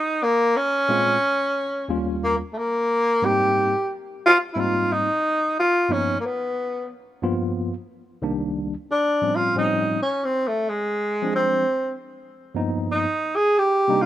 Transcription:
0.00 0.25 D#4 loud
0.23 0.58 A#3 loud
0.57 1.98 C#4 loud
0.88 1.15 A#2 medium
0.88 1.15 G#3 medium
0.88 1.15 C4 medium
0.88 1.16 C#4 medium
0.88 1.16 F4 medium
1.88 2.39 D#2 medium
1.88 2.40 G3 medium
1.88 2.40 A#3 medium
1.88 2.40 C#4 medium
1.88 2.40 F4 medium
2.23 2.36 A#3 medium
2.53 2.59 A3 medium
2.58 3.26 A#3 loud
3.22 3.73 G#2 medium
3.22 3.73 G3 medium
3.22 3.73 A#3 medium
3.22 3.73 C4 medium
3.22 3.74 D#4 medium
3.22 3.90 G4 loud
4.26 4.38 F4 loud
4.53 5.06 G#2 medium
4.53 5.06 G3 medium
4.53 5.07 A#3 medium
4.53 5.07 C4 medium
4.53 5.07 D#4 medium
4.53 4.61 E4 medium
4.59 4.94 F4 loud
4.93 5.58 D#4 loud
5.59 5.94 F4 loud
5.89 6.15 G2 medium
5.89 6.15 F3 medium
5.89 6.16 A#3 medium
5.89 6.16 B3 medium
5.89 6.19 C#4 medium
5.89 6.16 D#4 medium
6.20 6.27 A#3 medium
6.26 6.91 B3 medium
7.22 7.73 G2 medium
7.22 7.73 F3 medium
7.22 7.73 A#3 medium
7.22 7.73 B3 medium
7.22 7.73 F4 medium
8.22 8.73 C2 medium
8.22 8.73 D#3 medium
8.22 8.73 G3 medium
8.22 8.73 A#3 medium
8.22 8.73 D4 medium
8.91 9.37 D4 loud
9.22 9.54 A2 medium
9.22 9.54 F3 medium
9.22 9.55 G3 medium
9.22 9.55 C4 medium
9.22 9.56 C#4 medium
9.36 9.57 F4 loud
9.55 9.97 A2 medium
9.55 9.98 F3 medium
9.55 9.98 G3 medium
9.55 9.98 C4 medium
9.55 9.98 C#4 medium
9.55 9.98 D#4 medium
10.02 10.26 C#4 medium
10.25 10.49 C4 medium
10.48 10.70 A3 medium
10.69 11.35 G#3 medium
11.22 11.64 F3 medium
11.22 11.64 G#3 medium
11.22 11.65 C4 medium
11.22 11.65 D4 medium
11.36 11.97 C4 medium
12.55 13.06 G2 medium
12.55 13.06 F3 medium
12.55 13.06 A#3 medium
12.55 13.06 B3 medium
12.55 13.07 D#4 medium
12.91 13.38 D#4 loud
13.36 13.60 G#4 loud
13.58 14.04 G4 loud
13.88 14.06 C3 medium
13.88 14.06 G3 medium
13.88 14.06 A#3 medium
13.88 14.06 D4 medium
13.88 14.06 D#4 medium
14.02 14.06 F4 medium

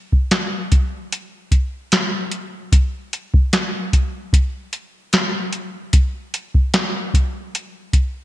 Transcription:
0.12 kick medium
0.31 snare loud
0.31 closed hi-hat medium
0.72 kick medium
0.72 closed hi-hat medium
1.12 closed hi-hat medium
1.51 kick medium
1.51 closed hi-hat medium
1.92 snare loud
1.92 closed hi-hat medium
2.32 closed hi-hat medium
2.72 kick loud
2.72 closed hi-hat medium
3.13 closed hi-hat medium
3.34 kick medium
3.53 snare loud
3.53 closed hi-hat medium
3.93 kick medium
3.93 closed hi-hat medium
4.33 kick medium
4.33 closed hi-hat medium
4.73 closed hi-hat medium
5.13 snare loud
5.13 closed hi-hat medium
5.53 closed hi-hat medium
5.93 kick medium
5.93 closed hi-hat medium
6.34 closed hi-hat medium
6.54 kick medium
6.74 snare loud
6.74 closed hi-hat medium
7.14 kick medium
7.14 closed hi-hat medium
7.55 closed hi-hat medium
7.93 kick medium
7.93 closed hi-hat medium

